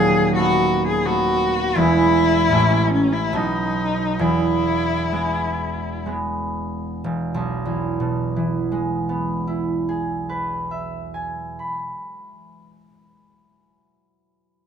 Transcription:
0.00 1.80 D#1 medium
0.00 1.80 D#2 medium
0.00 1.80 F#3 medium
0.00 0.35 B3 medium
0.00 0.33 G#4 medium
0.35 1.05 A3 soft
0.35 1.05 B3 medium
0.35 0.86 F#4 medium
0.87 1.07 G#4 medium
1.06 1.80 A3 soft
1.06 1.76 B3 soft
1.06 1.78 F#4 medium
1.75 2.55 E1 medium
1.75 2.55 E2 medium
1.75 2.55 G#3 soft
1.75 2.55 B3 soft
1.75 2.91 E4 medium
1.75 2.51 E4 soft
2.49 3.36 A1 medium
2.49 3.36 A2 soft
2.49 3.36 A3 soft
2.49 3.37 E4 soft
2.55 3.36 C#4 soft
2.94 3.14 C#4 medium
3.13 3.37 E4 medium
3.33 4.24 B1 medium
3.33 4.23 B2 soft
3.33 4.24 F#3 soft
3.33 5.11 B3 soft
3.33 4.22 D#4 medium
4.19 7.03 E1 soft
4.19 7.07 E2 soft
4.19 6.06 E4 medium
5.12 6.05 G#3 soft
5.12 6.05 B3 soft
6.06 8.70 G#3 soft
6.06 9.08 B3 soft
7.04 10.94 E1 soft
7.34 11.24 B1 soft
7.66 11.55 E2 soft
8.00 11.90 B2 soft
8.36 12.26 E3 soft
8.72 12.26 G#3 soft
9.09 12.64 B3 soft
9.47 13.02 E4 soft
9.89 13.43 G#4 soft
10.29 13.84 B4 soft
10.71 14.17 E5 soft
11.14 14.17 G#5 soft
11.59 14.17 B5 soft

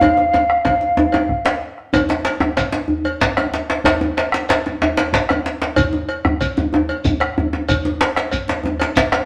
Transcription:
0.00 1.62 F5 loud
0.00 bombo rim soft
0.00 bombo low medium
0.00 cowbell medium
0.00 djembe tone medium
0.00 djembe bass medium
0.17 bombo rim soft
0.17 djembe slap medium
0.17 djembe tone medium
0.34 cowbell soft
0.34 djembe tone medium
0.50 bombo rim medium
0.65 bombo low medium
0.65 cowbell soft
0.65 djembe tone medium
0.81 djembe slap soft
0.97 djembe tone loud
0.97 djembe bass medium
1.12 cowbell soft
1.12 djembe slap soft
1.12 djembe tone medium
1.12 djembe tone loud
1.29 bombo rim soft
1.29 bombo low medium
1.45 bombo rim medium
1.45 cowbell soft
1.45 djembe slap medium
1.78 bombo rim soft
1.93 bombo low medium
1.93 cowbell medium
1.93 djembe tone loud
1.93 djembe bass medium
1.93 shekere medium
2.09 djembe slap medium
2.09 djembe tone medium
2.25 cowbell soft
2.25 djembe slap medium
2.40 bombo rim medium
2.40 djembe tone loud
2.57 bombo low medium
2.57 cowbell medium
2.57 djembe slap medium
2.57 shekere medium
2.72 djembe slap medium
2.72 shekere soft
2.88 djembe bass medium
3.04 cowbell soft
3.04 djembe slap soft
3.04 djembe tone medium
3.21 bombo low medium
3.21 djembe slap soft
3.21 djembe slap loud
3.21 shekere medium
3.37 bombo rim medium
3.37 cowbell soft
3.37 djembe slap medium
3.37 djembe tone medium
3.54 djembe slap medium
3.69 djembe slap soft
3.69 djembe slap medium
3.84 bombo low loud
3.84 cowbell medium
3.84 djembe slap loud
3.84 djembe bass medium
3.84 shekere medium
4.01 djembe slap medium
4.01 djembe tone medium
4.17 cowbell soft
4.17 djembe slap medium
4.32 bombo rim medium
4.32 djembe slap medium
4.49 cowbell medium
4.49 djembe slap loud
4.49 shekere medium
4.66 djembe slap medium
4.66 djembe tone medium
4.82 djembe slap medium
4.82 djembe bass medium
4.97 cowbell medium
4.97 djembe slap medium
4.97 djembe slap soft
4.97 djembe tone medium
5.13 bombo low medium
5.13 djembe slap loud
5.13 shekere medium
5.29 bombo rim medium
5.29 cowbell soft
5.29 djembe slap medium
5.29 djembe tone medium
5.46 djembe slap medium
5.61 djembe slap soft
5.61 djembe slap medium
5.76 bombo low loud
5.76 cowbell medium
5.76 djembe bass medium
5.76 shekere medium
5.93 djembe slap medium
5.93 djembe tone medium
6.09 cowbell soft
6.25 bombo rim medium
6.25 djembe bass medium
6.41 bombo low loud
6.41 cowbell medium
6.41 shekere medium
6.57 djembe slap medium
6.57 djembe bass medium
6.57 shekere soft
6.73 djembe tone medium
6.73 djembe bass medium
6.89 cowbell soft
6.89 djembe slap soft
6.89 djembe tone medium
7.05 bombo low loud
7.05 djembe slap soft
7.05 djembe bass medium
7.05 shekere medium
7.20 bombo rim medium
7.20 cowbell soft
7.20 djembe slap medium
7.38 djembe bass medium
7.53 djembe slap soft
7.53 djembe tone medium
7.69 bombo rim soft
7.69 bombo low loud
7.69 cowbell medium
7.69 djembe slap soft
7.69 djembe bass medium
7.69 shekere medium
7.84 djembe slap medium
7.84 djembe tone medium
7.84 shekere soft
8.01 cowbell soft
8.01 djembe slap loud
8.16 bombo rim medium
8.16 djembe slap medium
8.16 shekere soft
8.31 bombo rim soft
8.31 bombo low medium
8.31 cowbell soft
8.31 djembe slap soft
8.31 shekere medium
8.48 djembe slap medium
8.63 djembe slap soft
8.63 djembe tone medium
8.63 djembe bass medium
8.80 bombo rim soft
8.80 cowbell soft
8.80 djembe slap medium
8.80 djembe tone medium
8.96 bombo low loud
8.96 djembe slap loud
8.96 shekere medium
9.12 bombo rim medium
9.12 cowbell soft
9.12 djembe slap medium

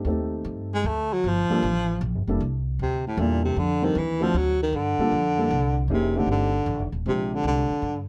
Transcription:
0.05 0.43 D#2 medium
0.05 0.85 A3 medium
0.05 0.85 C4 medium
0.05 0.85 D#4 medium
0.05 0.85 G4 medium
0.05 0.85 A4 medium
0.44 0.83 G2 medium
0.74 0.89 G#3 medium
0.84 1.22 D2 medium
0.84 1.15 A3 medium
1.13 1.29 F#3 medium
1.24 1.48 G1 medium
1.24 2.03 F3 medium
1.50 1.61 G3 medium
1.50 1.62 A#3 medium
1.50 1.62 D4 medium
1.50 1.62 F4 medium
1.50 1.62 A4 medium
1.50 muted upright bass stroke soft
1.63 2.00 A1 loud
2.01 2.15 A#1 loud
2.15 2.27 G1 medium
2.27 2.39 F1 medium
2.27 2.39 G3 medium
2.27 2.40 A#3 medium
2.27 2.39 D4 medium
2.27 2.40 E4 medium
2.27 2.40 A4 medium
2.40 2.78 C2 medium
2.79 3.17 D2 medium
2.79 3.05 C3 medium
3.07 3.22 A2 medium
3.17 3.55 E2 loud
3.17 3.44 A#2 medium
3.17 3.56 G3 medium
3.17 3.56 A#3 medium
3.17 3.57 D4 medium
3.17 3.57 E4 medium
3.17 3.57 A4 medium
3.45 3.60 C3 medium
3.56 3.94 F2 medium
3.56 3.86 D3 loud
3.82 3.99 D#3 medium
3.82 3.94 G3 medium
3.82 3.94 C4 medium
3.82 3.94 D4 medium
3.82 3.95 D#4 medium
3.82 3.95 A4 medium
3.95 4.33 D#2 medium
3.95 4.25 E3 medium
4.21 4.39 F3 medium
4.21 4.33 A3 medium
4.21 4.33 C4 medium
4.21 4.33 D4 medium
4.21 4.33 F#4 medium
4.21 4.33 A4 medium
4.34 4.72 D2 medium
4.34 4.62 F#3 medium
4.63 4.78 D#3 medium
4.73 4.97 G2 medium
4.73 5.84 D3 medium
4.98 5.11 G3 medium
4.98 5.11 A#3 medium
4.98 5.11 D4 medium
4.98 5.11 F4 medium
4.98 5.11 A4 medium
4.98 muted upright bass stroke soft
5.12 5.49 F2 medium
5.38 5.50 G3 medium
5.38 5.50 A#3 medium
5.38 5.50 D4 medium
5.38 5.50 E4 medium
5.38 5.50 A4 medium
5.51 5.87 C2 loud
5.88 6.26 F1 medium
5.88 6.13 A#3 medium
5.88 6.13 C#4 medium
5.88 6.13 D#4 medium
5.88 6.13 E4 medium
5.88 6.14 G#4 medium
5.93 6.20 C3 medium
6.16 6.30 D3 medium
6.16 6.49 A3 medium
6.16 6.49 C4 medium
6.16 6.50 D4 medium
6.16 6.49 D#4 medium
6.16 6.50 G4 medium
6.26 6.65 G1 medium
6.31 6.90 D3 medium
6.66 6.79 A1 medium
6.79 6.92 F1 medium
6.92 7.05 D#1 medium
7.06 7.43 A#1 medium
7.06 7.36 C3 medium
7.06 7.66 G#3 medium
7.06 7.66 C4 medium
7.06 7.66 D4 medium
7.06 7.66 F4 medium
7.06 7.66 G4 medium
7.34 7.46 D3 medium
7.43 7.68 C2 medium
7.47 8.07 D3 medium
7.70 muted upright bass stroke soft
7.82 8.08 G2 medium

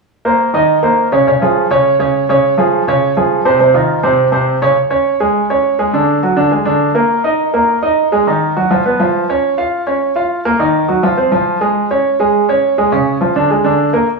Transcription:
0.25 0.48 A#3 medium
0.25 0.48 A#4 medium
0.25 0.49 C5 medium
0.54 0.77 D#3 medium
0.54 0.78 D#4 medium
0.54 0.78 D#5 medium
0.83 1.06 A#3 medium
0.83 1.06 A#4 medium
0.83 1.07 C5 medium
1.12 1.24 C#3 medium
1.12 1.24 C#4 medium
1.12 1.24 C#5 medium
1.27 1.38 C#3 medium
1.27 1.39 C#4 medium
1.27 1.39 C#5 medium
1.42 1.65 F3 medium
1.42 1.65 F4 medium
1.42 1.66 G#4 medium
1.70 1.94 C#3 medium
1.70 1.94 C#4 medium
1.70 1.95 C#5 medium
1.99 2.23 C#3 medium
1.99 2.23 C#4 medium
1.99 2.23 C#5 medium
2.29 2.53 C#3 medium
2.29 2.53 C#4 medium
2.29 2.53 C#5 medium
2.58 2.81 F3 medium
2.58 2.82 F4 medium
2.58 2.82 G#4 medium
2.88 3.11 C#3 medium
2.88 3.11 C#4 medium
2.88 3.12 C#5 medium
3.17 3.40 F3 medium
3.17 3.40 F4 medium
3.17 3.40 G#4 medium
3.45 3.57 C3 medium
3.45 3.57 C4 medium
3.45 3.57 C5 medium
3.60 3.72 C3 medium
3.60 3.72 C4 medium
3.60 3.72 C5 medium
3.74 3.98 D#3 medium
3.74 3.98 D#4 medium
3.74 3.98 F4 medium
4.03 4.27 C3 medium
4.03 4.27 C4 medium
4.03 4.27 C5 medium
4.32 4.56 C3 medium
4.32 4.56 C4 medium
4.32 4.57 C5 medium
4.62 4.74 C#3 medium
4.62 4.74 C#4 medium
4.62 4.74 C#5 medium
4.90 5.15 C#4 medium
4.90 5.15 C#5 medium
5.20 5.44 G#3 medium
5.20 5.44 G#4 medium
5.50 5.74 C#4 medium
5.50 5.74 C#5 medium
5.79 5.91 G#3 medium
5.79 5.91 G#4 medium
5.93 6.17 D3 medium
5.93 6.18 D4 medium
6.23 6.34 F#3 medium
6.23 6.35 F#4 medium
6.36 6.49 D3 medium
6.36 6.49 D4 medium
6.51 6.63 G#3 medium
6.51 6.63 G#4 medium
6.65 6.90 D3 medium
6.65 6.90 D4 medium
6.95 7.19 A#3 medium
6.95 7.19 A#4 medium
7.24 7.48 D#4 medium
7.24 7.48 D#5 medium
7.54 7.78 A#3 medium
7.54 7.78 A#4 medium
7.83 8.07 D#4 medium
7.83 8.07 D#5 medium
8.12 8.24 G#3 medium
8.12 8.24 G#4 medium
8.27 8.51 D#3 medium
8.27 8.51 D#4 medium
8.57 8.68 F#3 medium
8.57 8.68 F#4 medium
8.71 8.82 F3 medium
8.71 8.82 F4 medium
8.85 8.97 B3 medium
8.85 8.97 B4 medium
9.00 9.23 F3 medium
9.00 9.24 F4 medium
9.29 9.53 C#4 medium
9.29 9.53 C#5 medium
9.58 9.82 F4 medium
9.58 9.82 F5 medium
9.87 10.11 C#4 medium
9.87 10.11 C#5 medium
10.16 10.40 F4 medium
10.16 10.40 F5 medium
10.45 10.57 A#3 medium
10.45 10.57 A#4 medium
10.59 10.83 D#3 medium
10.59 10.84 D#4 medium
10.88 11.01 F#3 medium
10.88 11.01 F#4 medium
11.03 11.15 F3 medium
11.03 11.15 F4 medium
11.17 11.29 C4 medium
11.17 11.30 C5 medium
11.32 11.56 F3 medium
11.32 11.56 F4 medium
11.61 11.85 G#3 medium
11.61 11.85 G#4 medium
11.91 12.15 C#4 medium
11.91 12.15 C#5 medium
12.20 12.44 G#3 medium
12.20 12.44 G#4 medium
12.49 12.73 C#4 medium
12.49 12.73 C#5 medium
12.78 12.90 G#3 medium
12.78 12.90 G#4 medium
12.92 13.16 C#3 medium
12.92 13.16 C#4 medium
13.21 13.33 F3 medium
13.21 13.33 F4 medium
13.36 13.48 D3 medium
13.36 13.48 D4 medium
13.50 13.62 G#3 medium
13.50 13.63 G#4 medium
13.64 13.88 D3 medium
13.64 13.88 D4 medium
13.93 14.05 A#3 medium
13.93 14.06 A#4 medium

